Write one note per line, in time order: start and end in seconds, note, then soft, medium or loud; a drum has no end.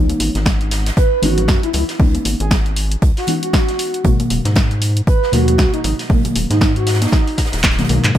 0.00 0.13 C#2 medium
0.00 1.20 E3 medium
0.00 1.20 G#3 medium
0.00 1.20 B3 medium
0.00 1.20 C#4 medium
0.00 1.21 D#4 loud
0.09 closed hi-hat soft
0.09 high conga medium
0.20 0.30 G#1 medium
0.20 closed hi-hat medium
0.20 open hi-hat loud
0.20 high conga medium
0.35 0.91 G#1 medium
0.35 snare soft
0.35 closed hi-hat medium
0.46 kick loud
0.46 snare loud
0.46 closed hi-hat medium
0.61 closed hi-hat soft
0.71 snare medium
0.71 closed hi-hat medium
0.71 open hi-hat loud
0.86 snare medium
0.86 closed hi-hat medium
0.97 1.21 B4 medium
0.97 kick loud
0.97 closed hi-hat medium
1.22 1.50 G#1 medium
1.22 1.97 E3 medium
1.22 1.97 G#3 medium
1.22 1.97 B3 medium
1.22 1.97 C#4 medium
1.22 1.97 D#4 medium
1.22 1.60 F#4 loud
1.22 snare soft
1.22 closed hi-hat medium
1.22 open hi-hat loud
1.38 closed hi-hat medium
1.38 low conga medium
1.48 1.58 F#2 medium
1.48 kick loud
1.48 snare loud
1.48 closed hi-hat medium
1.63 1.70 E4 medium
1.63 closed hi-hat soft
1.73 1.84 C#2 medium
1.73 1.84 E4 medium
1.73 closed hi-hat medium
1.73 open hi-hat medium
1.73 low conga medium
1.89 snare medium
1.89 open hi-hat medium
1.99 2.18 C#2 loud
1.99 3.25 E3 loud
1.99 3.25 G#3 medium
1.99 3.25 B3 medium
1.99 3.25 C#4 medium
1.99 3.26 D#4 loud
1.99 kick loud
1.99 open hi-hat medium
2.14 closed hi-hat soft
2.14 high conga medium
2.25 2.35 G#1 medium
2.25 closed hi-hat medium
2.25 open hi-hat loud
2.25 high conga medium
2.40 2.96 G#1 medium
2.40 2.56 G#4 loud
2.40 closed hi-hat medium
2.51 kick loud
2.51 snare loud
2.51 closed hi-hat medium
2.66 closed hi-hat soft
2.76 closed hi-hat medium
2.76 open hi-hat medium
2.92 closed hi-hat medium
3.02 3.12 C#2 loud
3.02 kick loud
3.02 closed hi-hat medium
3.17 3.33 F#4 medium
3.17 snare soft
3.17 open hi-hat medium
3.27 4.02 E3 medium
3.27 4.02 G#3 medium
3.27 4.02 B3 medium
3.27 4.02 C#4 medium
3.27 4.03 D#4 medium
3.27 closed hi-hat medium
3.27 open hi-hat loud
3.43 4.11 F#4 loud
3.43 closed hi-hat medium
3.53 kick loud
3.53 snare loud
3.53 closed hi-hat medium
3.68 snare soft
3.68 closed hi-hat soft
3.79 closed hi-hat medium
3.79 open hi-hat medium
3.94 closed hi-hat medium
4.04 4.23 G#1 loud
4.04 5.30 B2 medium
4.04 5.30 D#3 medium
4.04 5.30 F#3 medium
4.04 5.31 G#3 medium
4.04 5.31 A#3 loud
4.04 kick loud
4.04 closed hi-hat medium
4.19 closed hi-hat soft
4.19 high conga medium
4.30 4.40 D#1 medium
4.30 closed hi-hat medium
4.30 open hi-hat loud
4.30 high conga medium
4.45 5.01 G#2 medium
4.45 snare soft
4.45 closed hi-hat medium
4.55 kick loud
4.55 snare loud
4.55 closed hi-hat medium
4.71 closed hi-hat soft
4.82 closed hi-hat medium
4.82 open hi-hat loud
4.97 closed hi-hat medium
5.07 5.31 B4 medium
5.07 kick loud
5.07 closed hi-hat medium
5.23 snare soft
5.32 5.60 D#2 medium
5.32 6.07 B2 medium
5.32 6.07 D#3 medium
5.32 6.07 F#3 medium
5.32 6.07 G#3 medium
5.32 6.08 A#3 medium
5.32 5.71 F#4 loud
5.32 snare soft
5.32 closed hi-hat medium
5.32 open hi-hat medium
5.48 closed hi-hat medium
5.48 low conga medium
5.58 5.68 C#2 medium
5.58 kick loud
5.58 snare loud
5.58 closed hi-hat medium
5.73 5.80 D#4 medium
5.73 closed hi-hat medium
5.84 5.94 G#1 medium
5.84 5.94 D#4 medium
5.84 closed hi-hat medium
5.84 open hi-hat loud
5.84 low conga medium
5.99 snare soft
5.99 open hi-hat medium
6.09 6.28 G#1 loud
6.09 7.35 B2 medium
6.09 7.35 D#3 medium
6.09 7.36 F#3 medium
6.09 7.36 G#3 medium
6.09 7.36 A#3 loud
6.09 kick loud
6.09 open hi-hat medium
6.25 closed hi-hat soft
6.25 closed hi-hat medium
6.25 high conga medium
6.35 6.45 D#1 medium
6.35 closed hi-hat medium
6.35 open hi-hat loud
6.35 high conga medium
6.50 7.07 G#2 medium
6.50 6.57 D#4 medium
6.50 snare soft
6.50 closed hi-hat medium
6.61 6.71 D#4 medium
6.61 kick loud
6.61 snare loud
6.61 closed hi-hat medium
6.76 6.99 F#4 medium
6.76 closed hi-hat soft
6.87 snare medium
6.87 closed hi-hat medium
6.87 open hi-hat loud
6.94 snare loud
6.94 closed hi-hat medium
7.02 7.38 D#4 loud
7.02 snare medium
7.02 closed hi-hat medium
7.02 high conga medium
7.07 snare medium
7.07 closed hi-hat medium
7.12 kick loud
7.12 snare loud
7.12 snare medium
7.12 closed hi-hat medium
7.27 open hi-hat medium
7.38 kick medium
7.38 snare medium
7.38 closed hi-hat medium
7.38 open hi-hat medium
7.46 snare medium
7.46 closed hi-hat medium
7.52 7.83 D#1 medium
7.52 snare medium
7.52 closed hi-hat medium
7.58 snare medium
7.58 closed hi-hat medium
7.63 kick loud
7.63 snare medium
7.63 snare loud
7.63 clap loud
7.71 snare medium
7.71 closed hi-hat medium
7.78 7.87 B2 medium
7.78 7.87 D#3 medium
7.78 7.87 F#3 medium
7.78 7.87 G#3 medium
7.78 7.87 A#3 medium
7.78 snare medium
7.78 closed hi-hat medium
7.83 snare medium
7.83 closed hi-hat medium
7.89 7.99 B1 loud
7.89 8.12 B2 medium
7.89 8.12 D#3 medium
7.89 8.12 F#3 medium
7.89 8.13 G#3 medium
7.89 8.13 A#3 medium
7.89 snare soft
7.89 closed hi-hat medium
7.89 open hi-hat medium
7.89 high conga medium
8.04 8.11 G#2 medium
8.04 clap medium
8.04 closed hi-hat medium
8.14 8.18 C#2 medium
8.14 8.18 E3 medium
8.14 8.18 G#3 medium
8.14 8.18 B3 medium
8.14 kick loud